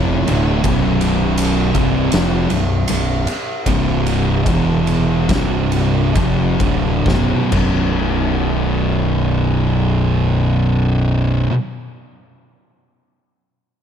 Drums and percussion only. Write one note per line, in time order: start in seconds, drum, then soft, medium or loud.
0.28 ride medium
0.64 kick loud
0.64 ride medium
1.01 ride medium
1.38 ride medium
1.75 kick loud
1.75 ride medium
2.12 snare loud
2.12 ride medium
2.50 ride medium
2.88 ride medium
3.27 ride medium
3.66 kick loud
3.66 ride medium
4.06 ride medium
4.46 kick loud
4.46 ride medium
4.87 ride medium
5.29 kick loud
5.29 snare loud
5.29 ride medium
5.72 ride medium
6.15 kick loud
6.15 ride medium
6.60 kick medium
6.60 ride medium
7.06 kick medium
7.06 snare medium
7.52 kick loud
7.52 crash medium